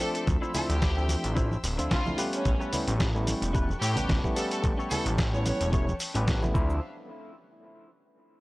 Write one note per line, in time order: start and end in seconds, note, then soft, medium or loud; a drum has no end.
0.00 0.52 F3 medium
0.00 0.52 A3 medium
0.00 0.52 C4 medium
0.00 0.52 D4 medium
0.00 0.10 A4 loud
0.00 2.14 C5 medium
0.00 2.14 E5 medium
0.00 0.25 D6 loud
0.00 open hi-hat medium
0.00 cabasa medium
0.00 shaker medium
0.14 0.23 A4 medium
0.14 muted clean electric guitar stroke soft
0.14 closed hi-hat medium
0.14 cabasa medium
0.14 shaker soft
0.26 0.37 D2 medium
0.26 2.16 E6 medium
0.26 muted clean electric guitar stroke loud
0.26 kick loud
0.26 closed hi-hat medium
0.26 high conga medium
0.26 cabasa soft
0.26 shaker soft
0.41 0.89 D4 medium
0.41 0.89 E4 medium
0.41 0.89 F4 medium
0.41 0.90 C5 loud
0.41 shaker soft
0.54 0.74 F3 loud
0.54 0.75 A3 medium
0.54 0.75 C4 medium
0.54 0.75 D4 medium
0.54 0.75 E4 loud
0.54 0.67 A4 loud
0.54 open hi-hat loud
0.54 low conga medium
0.54 cabasa loud
0.54 shaker medium
0.69 1.16 D2 loud
0.69 1.24 G4 loud
0.69 closed hi-hat medium
0.69 high conga medium
0.69 cabasa soft
0.69 shaker soft
0.82 kick loud
0.82 snare loud
0.82 closed hi-hat medium
0.82 cabasa soft
0.82 shaker soft
0.96 1.33 F3 loud
0.96 1.33 A3 loud
0.96 1.33 C4 medium
0.96 1.34 D4 medium
0.96 1.34 E5 loud
0.96 shaker soft
1.09 open hi-hat medium
1.09 high conga medium
1.09 cabasa loud
1.09 shaker medium
1.24 1.57 A1 medium
1.24 closed hi-hat medium
1.24 cabasa medium
1.24 shaker soft
1.35 1.49 F3 medium
1.35 1.50 A3 medium
1.35 1.50 C4 medium
1.35 1.57 D4 medium
1.35 1.50 D4 medium
1.35 1.57 E4 medium
1.35 1.50 E4 medium
1.35 1.57 F4 medium
1.35 1.58 C5 loud
1.35 kick loud
1.35 closed hi-hat medium
1.35 cabasa soft
1.35 shaker soft
1.51 high conga medium
1.51 shaker soft
1.64 1.78 D1 loud
1.64 open hi-hat loud
1.64 cabasa loud
1.64 shaker medium
1.77 1.89 D2 soft
1.77 2.02 F3 loud
1.77 2.02 A3 medium
1.77 2.02 C4 medium
1.77 2.05 D4 medium
1.77 2.02 D4 medium
1.77 2.06 E4 medium
1.77 2.06 F4 medium
1.77 2.03 F4 loud
1.77 2.06 C5 loud
1.77 closed hi-hat medium
1.77 cabasa medium
1.77 shaker soft
1.91 2.01 D2 medium
1.91 2.15 F4 medium
1.91 kick loud
1.91 snare loud
1.91 closed hi-hat medium
1.91 cabasa soft
1.91 shaker soft
2.05 2.16 F3 medium
2.05 2.16 A3 medium
2.05 2.16 C4 medium
2.05 2.17 D4 medium
2.05 2.17 E4 loud
2.05 high conga medium
2.05 low conga medium
2.05 shaker soft
2.17 2.70 G3 medium
2.17 2.70 A3 medium
2.17 2.70 B3 medium
2.17 2.51 C#4 medium
2.17 2.70 C#4 medium
2.17 2.51 G4 medium
2.17 2.70 G4 loud
2.17 2.51 A4 medium
2.17 6.51 B4 medium
2.17 2.52 B4 loud
2.17 6.50 G5 medium
2.17 6.51 A5 medium
2.17 6.51 C#6 medium
2.17 open hi-hat medium
2.17 cabasa loud
2.17 shaker medium
2.33 2.73 C#4 medium
2.33 closed hi-hat medium
2.33 cabasa soft
2.33 shaker soft
2.45 2.55 A1 loud
2.45 kick loud
2.45 closed hi-hat medium
2.45 high conga medium
2.45 cabasa soft
2.45 shaker soft
2.59 3.07 C#4 medium
2.59 3.07 G4 medium
2.59 3.08 A4 medium
2.59 3.08 B4 loud
2.59 shaker soft
2.73 2.93 G3 loud
2.73 2.93 A3 medium
2.73 2.93 B3 medium
2.73 2.93 C#4 medium
2.73 2.93 E4 loud
2.73 open hi-hat loud
2.73 low conga medium
2.73 cabasa loud
2.73 shaker medium
2.88 3.34 A1 loud
2.88 closed hi-hat medium
2.88 high conga medium
2.88 cabasa medium
2.88 shaker soft
3.00 kick loud
3.00 snare loud
3.00 closed hi-hat medium
3.00 cabasa soft
3.00 shaker soft
3.15 3.51 G3 loud
3.15 3.52 A3 medium
3.15 3.52 B3 medium
3.15 3.52 C#4 loud
3.15 3.52 E4 loud
3.15 shaker soft
3.27 open hi-hat medium
3.27 high conga medium
3.27 cabasa medium
3.27 shaker medium
3.42 3.75 E1 medium
3.42 closed hi-hat medium
3.42 cabasa medium
3.42 shaker soft
3.53 3.68 G3 medium
3.53 3.68 A3 medium
3.53 3.68 B3 medium
3.53 3.75 C#4 medium
3.53 3.68 C#4 medium
3.53 3.68 E4 loud
3.53 3.75 G4 medium
3.53 3.76 A4 medium
3.53 3.76 B4 loud
3.53 kick loud
3.53 closed hi-hat medium
3.53 cabasa soft
3.53 shaker soft
3.69 high conga medium
3.69 shaker soft
3.82 3.96 A2 loud
3.82 4.06 G4 loud
3.82 open hi-hat loud
3.82 cabasa medium
3.82 shaker medium
3.95 4.07 A1 soft
3.95 4.20 G3 loud
3.95 4.21 A3 medium
3.95 4.21 B3 medium
3.95 4.23 C#4 medium
3.95 4.21 C#4 medium
3.95 4.24 G4 medium
3.95 4.21 G4 loud
3.95 4.24 A4 medium
3.95 4.24 B4 loud
3.95 closed hi-hat medium
3.95 low conga medium
3.95 cabasa medium
3.95 shaker soft
4.09 4.19 A1 medium
4.09 kick loud
4.09 snare loud
4.09 closed hi-hat medium
4.09 low conga medium
4.09 cabasa soft
4.09 shaker soft
4.24 4.34 G3 loud
4.24 4.34 A3 medium
4.24 4.35 B3 medium
4.24 4.35 C#4 medium
4.24 4.35 E4 loud
4.24 kick medium
4.24 high conga medium
4.24 shaker soft
4.36 4.88 G3 medium
4.36 4.88 A3 medium
4.36 4.88 B3 medium
4.36 4.88 C#4 medium
4.36 4.88 G4 loud
4.36 4.46 A4 medium
4.36 open hi-hat medium
4.36 cabasa loud
4.36 shaker medium
4.51 4.59 A4 medium
4.51 muted clean electric guitar stroke soft
4.51 closed hi-hat medium
4.51 cabasa medium
4.51 shaker soft
4.63 4.74 A1 loud
4.63 muted clean electric guitar stroke loud
4.63 kick loud
4.63 closed hi-hat medium
4.63 high conga medium
4.63 cabasa soft
4.63 shaker soft
4.78 5.25 C#4 medium
4.78 5.26 G4 medium
4.78 5.26 A4 medium
4.78 5.26 C#5 loud
4.78 shaker soft
4.91 5.11 G3 medium
4.91 5.11 A3 medium
4.91 5.11 B3 medium
4.91 5.11 C#4 medium
4.91 5.11 E4 loud
4.91 5.03 A4 medium
4.91 open hi-hat loud
4.91 low conga medium
4.91 cabasa loud
4.91 shaker medium
5.06 5.52 A1 loud
5.06 closed hi-hat medium
5.06 high conga medium
5.06 cabasa medium
5.06 shaker soft
5.18 kick loud
5.18 snare loud
5.18 closed hi-hat medium
5.18 cabasa soft
5.18 shaker soft
5.33 5.70 G3 loud
5.33 5.70 A3 loud
5.33 5.70 B3 medium
5.33 5.70 C#4 medium
5.33 5.70 E4 loud
5.33 5.43 C#5 medium
5.33 shaker soft
5.45 5.88 C#5 medium
5.45 open hi-hat medium
5.45 high conga medium
5.45 cabasa loud
5.45 shaker medium
5.61 5.93 E1 medium
5.61 closed hi-hat medium
5.61 cabasa medium
5.61 shaker soft
5.72 5.86 G3 medium
5.72 5.86 A3 medium
5.72 5.86 B3 medium
5.72 5.94 C#4 medium
5.72 5.86 C#4 medium
5.72 5.87 E4 loud
5.72 5.94 G4 medium
5.72 5.94 A4 medium
5.72 5.94 C#5 loud
5.72 kick loud
5.72 closed hi-hat medium
5.72 cabasa soft
5.72 shaker soft
5.89 high conga medium
5.89 shaker soft
6.00 open hi-hat loud
6.00 cabasa loud
6.00 shaker medium
6.14 6.54 A1 medium
6.14 6.39 G3 loud
6.14 6.39 A3 medium
6.14 6.39 B3 medium
6.14 6.42 C#4 medium
6.14 6.39 C#4 medium
6.14 6.42 G4 medium
6.14 6.39 G4 loud
6.14 6.42 A4 medium
6.14 6.43 B4 loud
6.14 closed hi-hat medium
6.14 cabasa medium
6.14 shaker soft
6.28 kick loud
6.28 snare loud
6.28 closed hi-hat medium
6.28 cabasa soft
6.28 shaker soft
6.42 6.52 G3 medium
6.42 6.53 A3 medium
6.42 6.53 B3 medium
6.42 6.53 C#4 medium
6.42 6.53 E4 loud
6.42 high conga loud
6.42 low conga medium
6.42 shaker soft
6.53 6.80 D2 loud
6.53 6.75 F3 medium
6.53 6.75 A3 medium
6.53 6.75 C4 medium
6.53 6.80 D4 medium
6.53 6.76 D4 medium
6.53 6.80 E4 medium
6.53 6.76 E4 loud
6.53 6.80 F4 medium
6.53 6.80 C5 medium
6.53 6.80 E5 medium
6.53 6.80 F5 medium
6.53 kick loud
6.53 cabasa loud
6.70 cabasa medium